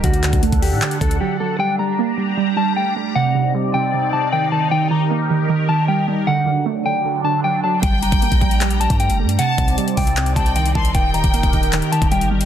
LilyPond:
<<
  \new Staff \with { instrumentName = "Clean electric guitar" } { \time 4/4 \key g \minor \tempo 4 = 154 fis'4 r8 g'4 a'8 g'8 a'8 | g''8 bes''4. r8 a''8 g''8 r8 | fis''4 r8 g''4 a''8 g''8 a''8 | g''8 bes''4. r8 a''8 g''8 r8 |
fis''4 r8 g''4 a''8 g''8 a''8 | g''8 bes''4. r8 a''8 g''8 r8 | fis''4 r8 g''4 a''8 g''8 a''8 | g''8 bes''4. r8 a''8 g''8 r8 | }
  \new Staff \with { instrumentName = "Violin section" } { \time 4/4 \key g \minor r1 | r1 | r1 | r1 |
r1 | g''2. r4 | a''4 r4. g''4 c'''8 | g''2. r4 | }
  \new Staff \with { instrumentName = "Analog synth pad" } { \time 4/4 \key g \minor << { <d a' fis''>1 | <g g' bes''>1 | <c ees' d''>1 | <ees g' bes'>1 |
<d fis>1 | <g bes''>1 | <c ees' d''>1 | <ees g' bes'>1 | } \\ { d'1 | d'1 | c'1 | r1 |
d'1~ | d'1 | c'1 | r1 | } >> }
  \new Staff \with { instrumentName = "Synth pluck" } { \clef bass \time 4/4 \key g \minor d8 d8 a8 d8 d8 d8 fis8 fis8 | g8 g8 bes8 g8 g8 g8 a8 a8 | c8 c8 g8 c8 c8 c8 ees8 ees8 | ees8 ees8 bes8 ees8 ees8 ees8 g8 g8 |
d8 d8 a8 d8 d8 d8 fis8 fis8 | g8 g8 bes8 g8 g8 g8 a8 a8 | c8 c8 g8 c8 c8 c8 ees8 ees8 | ees8 ees8 bes8 ees8 ees8 ees8 g8 g8 | }
  \new Staff \with { instrumentName = "808-style bass" } { \clef bass \time 4/4 \key g \minor d,8. d,8 d,8 a,16 r8 d,8 r4 | r1 | r1 | r1 |
r1 | g,,8 fis,,16 g,,8 bes,,4. g,8 fis,,16. g,16. | r8 c,8 r8 c,4 c,4 c,8 | ees,,8. ees,,8 ees,,16 ees,,8. r8 ees,,8 g,,8. | }
  \new DrumStaff \with { instrumentName = "Drums" } \drummode { \time 4/4 <hh bd>16 hh16 <hc hh>16 <hh bd>16 hh16 <hh bd>16 hho8 <hc hh>16 hh16 <hh bd>16 hh16 r4 | r4 r4 r4 r4 | r4 r4 r4 r4 | r4 r4 r4 r4 |
r4 r4 r4 r4 | <hh bd>8 hh16 <hh bd>16 hh16 <hh bd>16 <hh bd>16 hh16 <hc hh>16 hh16 hh16 <hh bd>16 hh16 hh8 hh16 | hh8 <hh bd>16 hh16 hh16 hh16 <hh hho bd>16 hh16 <hc hh>16 hh16 <hh bd>16 hh16 hh16 hh16 bd16 hh16 | <hh bd>8 hh16 <hh bd>16 hh16 <hh bd>16 <hh bd>16 hh16 <hc hh>16 hh16 hh16 <hh bd>16 hh16 hh8 hh16 | }
>>